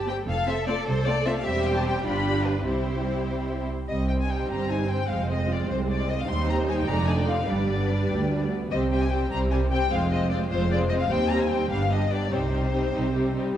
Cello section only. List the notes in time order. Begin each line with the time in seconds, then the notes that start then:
Already playing: G4
0.28 A4
1.46 G4
2.06 D4
2.67 E4
3.89 C2
4.50 G2
5.10 F2
5.69 C2
6.28 D#2
6.87 F2
7.48 G2
8.10 D2
8.72 C3
9.32 C3
9.92 F2
10.51 F2
11.10 D#2
11.70 G2
12.32 C3
12.94 C3